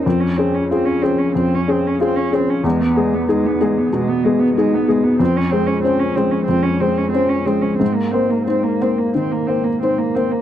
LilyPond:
<<
  \new Staff \with { instrumentName = "Felt piano" } { \time 4/4 \key des \major \tempo 4 = 93 f,8 <des' aes'>8 <f' aes'>8 <des' aes'>8 f,8 <des' aes'>8 <f' aes'>8 <des' aes'>8 | e,8 <b gis'>8 <dis' gis'>8 <b gis'>8 b,8 <b gis'>8 <dis' gis'>8 <b gis'>8 | f,8 <aes c''>8 <des' c''>8 <aes c''>8 f,8 <aes c''>8 <des' c''>8 <aes c''>8 | aes,8 <bes c''>8 <ees' c''>8 <bes c''>8 ees8 <bes c''>8 <ees' c''>8 <bes c''>8 | }
  \new Staff \with { instrumentName = "Cello" } { \time 4/4 \key des \major c'16 des'16 c'16 des'16 c'16 des'16 c'16 des'16 c'16 des'16 c'16 des'16 c'16 des'16 c'16 des'16 | gis16 b16 gis16 b16 gis16 b16 gis16 b16 gis16 b16 gis16 b16 gis16 b16 gis16 b16 | c'16 des'16 c'16 des'16 c'16 des'16 c'16 des'16 c'16 des'16 c'16 des'16 c'16 des'16 c'16 des'16 | c'16 bes16 c'16 bes16 c'16 bes16 c'16 bes16 c'16 bes16 c'16 bes16 c'16 bes16 c'16 bes16 | }
>>